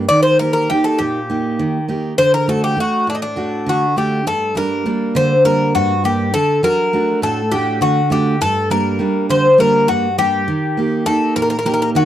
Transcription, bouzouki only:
0.09 0.22 D5 loud
0.23 0.38 C5 medium
0.39 0.52 A#4 medium
0.53 0.68 A#4 medium
0.70 0.84 G4 medium
0.84 0.98 A4 medium
0.98 1.84 G4 medium
2.18 2.32 C5 loud
2.34 2.47 A#4 medium
2.49 2.62 A4 medium
2.64 2.79 G4 medium
2.80 3.07 F#4 medium
3.10 3.15 D4 medium
3.15 3.22 D#4 medium
3.22 3.93 D4 medium
3.69 3.96 F#4 medium
3.98 4.25 G4 medium
4.27 4.54 A4 medium
4.57 5.16 A#4 medium
5.16 5.43 C5 medium
5.45 5.72 A#4 medium
5.75 6.05 F#4 medium
6.05 6.32 G4 medium
6.34 6.61 A4 medium
6.64 7.19 A#4 medium
7.23 7.53 A4 medium
7.52 7.79 G4 medium
7.82 8.09 F#4 medium
8.12 8.39 G4 medium
8.42 8.69 A4 loud
8.71 9.26 A#4 medium
9.30 9.60 C5 medium
9.60 9.87 A#4 medium
9.88 10.16 F#4 medium
10.19 11.03 G4 medium
11.06 11.34 A4 medium
11.36 11.41 A#4 medium
11.42 11.49 A#4 medium
11.50 11.57 A#4 medium
11.59 11.65 A#4 medium
11.66 11.72 A#4 medium
11.74 11.81 A#4 medium
11.82 11.89 A#4 medium
11.96 12.05 F#4 medium

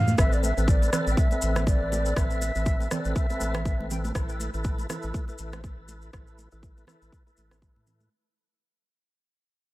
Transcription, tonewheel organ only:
0.19 0.54 C4 loud
0.19 0.54 A4 medium
0.19 0.54 B4 loud
0.57 0.90 C4 medium
0.57 0.90 A4 medium
0.57 0.90 B4 medium
0.93 1.28 C4 loud
0.93 1.28 A4 medium
0.93 1.28 B4 loud
1.32 1.65 C4 loud
1.32 1.65 A4 medium
1.32 1.65 B4 loud
1.67 2.14 C4 medium
1.67 2.14 A4 medium
1.67 2.14 B4 medium
2.17 2.52 C4 medium
2.17 2.52 A4 medium
2.17 2.52 B4 loud
2.55 2.89 C4 medium
2.55 2.89 A4 medium
2.55 2.88 B4 medium
2.91 3.27 C4 medium
2.91 3.27 A4 medium
2.91 3.27 B4 loud
3.30 3.63 C4 loud
3.30 3.63 A4 medium
3.30 3.63 B4 loud
3.66 4.13 C4 medium
3.66 4.13 A4 medium
3.66 4.13 B4 medium
4.15 4.50 E4 medium
4.15 4.50 A4 medium
4.15 4.50 B4 loud
4.54 4.87 E4 medium
4.54 4.87 A4 medium
4.54 4.87 B4 medium
4.90 5.25 E4 loud
4.90 5.25 A4 medium
4.90 5.25 B4 loud
5.28 5.61 E4 medium
5.28 5.61 A4 medium
5.28 5.61 B4 loud
5.64 6.11 E4 medium
5.64 6.11 A4 medium
5.64 6.11 B4 medium
6.14 6.49 E4 medium
6.14 6.49 A4 medium
6.14 6.49 B4 loud
6.52 6.85 E4 medium
6.52 6.85 A4 medium
6.52 6.85 B4 medium
6.88 7.23 E4 loud
6.88 7.23 A4 medium
6.88 7.23 B4 loud
7.26 7.60 E4 loud
7.26 7.60 A4 medium
7.26 7.60 B4 loud
7.63 8.09 E4 medium
7.63 8.09 A4 medium
7.63 8.09 B4 medium

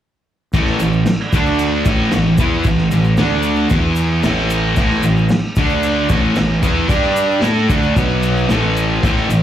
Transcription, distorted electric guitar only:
0.54 0.79 A2 medium
0.54 0.80 E3 loud
0.54 0.80 A3 loud
0.81 1.02 A2 medium
0.81 1.02 E3 medium
1.33 1.85 D3 medium
1.33 1.86 A3 loud
1.33 1.86 D4 loud
1.86 2.12 A2 medium
1.86 2.12 E3 medium
1.86 2.13 A3 loud
2.14 2.34 A2 medium
2.14 2.34 E3 medium
2.39 2.64 E3 loud
2.39 2.65 B3 medium
2.39 2.65 E4 loud
2.66 2.86 A2 medium
2.66 2.87 E3 medium
2.92 3.13 A2 medium
2.92 3.13 E3 medium
3.18 3.70 D3 medium
3.18 3.71 A3 loud
3.18 3.71 D4 medium
3.71 4.23 E3 loud
3.71 4.24 B3 medium
3.71 4.24 E4 loud
4.24 4.75 A2 loud
4.24 4.77 E3 loud
4.24 4.77 A3 loud
4.76 5.02 A2 loud
4.76 5.03 E3 loud
4.76 5.04 A3 loud
5.05 5.25 A2 medium
5.05 5.25 E3 medium
5.57 6.09 D3 medium
5.57 6.10 A3 medium
5.57 6.10 D4 loud
6.09 6.35 A2 medium
6.09 6.36 E3 medium
6.09 6.36 A3 loud
6.37 6.58 A2 medium
6.37 6.58 E3 medium
6.63 6.89 E3 loud
6.63 6.88 B3 loud
6.63 6.89 E4 loud
6.89 7.42 G3 medium
6.89 7.42 D4 loud
6.89 7.43 G4 loud
7.42 7.68 A3 medium
7.42 7.69 E4 medium
7.42 7.69 A4 loud
7.69 7.95 D3 medium
7.69 7.96 A3 loud
7.69 7.96 D4 loud
7.95 8.48 B2 loud
7.95 8.49 F#3 loud
7.95 8.49 B3 loud
8.49 9.02 A2 medium
8.49 9.02 E3 loud
8.49 9.03 A3 loud
9.03 9.29 A2 medium
9.03 9.29 E3 loud
9.03 9.30 A3 loud
9.30 9.43 A2 medium
9.30 9.43 E3 medium

